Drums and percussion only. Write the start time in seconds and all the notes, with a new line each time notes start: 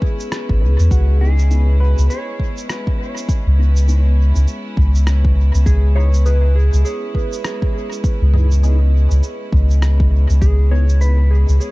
0.02 kick
0.20 cabasa
0.32 cross-stick, cabasa
0.49 kick
0.79 cabasa
0.91 kick, cabasa
1.39 cabasa
1.51 cabasa
1.98 cabasa
2.10 cabasa
2.40 kick
2.58 cabasa
2.69 cross-stick, cabasa
2.87 kick
3.17 cabasa
3.29 kick, cabasa
3.76 cabasa
3.88 cabasa
4.36 cabasa
4.47 cabasa
4.77 kick
4.95 cabasa
5.07 cross-stick, cabasa
5.25 kick
5.54 cabasa
5.66 kick, cabasa
6.14 cabasa
6.26 cabasa
6.73 cabasa
6.85 cabasa
7.15 kick
7.33 cabasa
7.45 cross-stick, cabasa
7.62 kick
7.92 cabasa
8.04 kick, cabasa
8.34 mid tom
8.51 cabasa
8.63 cabasa
9.11 cabasa
9.23 cabasa
9.52 kick
9.70 cabasa
9.82 cross-stick, cabasa
10.00 kick
10.30 cabasa
10.42 kick, cabasa
10.89 cabasa
11.01 cabasa
11.49 cabasa
11.61 cabasa